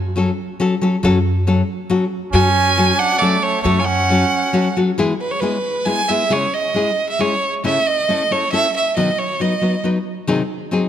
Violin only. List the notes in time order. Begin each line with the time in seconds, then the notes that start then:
2.33 G#5
2.99 F#5
3.19 D5
3.43 C#5
3.63 C#5
3.80 G#5
3.84 F#5
5.21 B4
5.31 C#5
5.41 B4
5.86 G#5
6.09 E5
6.33 C#5
6.54 D#5
7.09 E5
7.21 C#5
7.65 E5
7.87 D#5
8.32 C#5
8.52 E5
8.76 E5
8.96 D#5
9.18 C#5
9.41 D#5